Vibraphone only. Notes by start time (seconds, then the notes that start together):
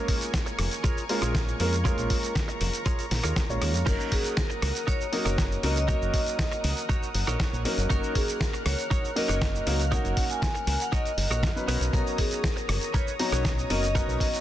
3.88 A#4
4.13 G#4
4.38 A#4
4.88 C#5
5.63 D#5
5.71 C#5
5.78 D#5
7.90 A#4
8.16 G#4
8.41 A#4
8.66 C#5
9.17 D#5
9.67 F5
9.92 F#5
10.30 G#5
10.80 F#5
10.93 D#5
11.94 A#4
12.19 G#4
12.44 A#4
12.94 C#5
13.70 D#5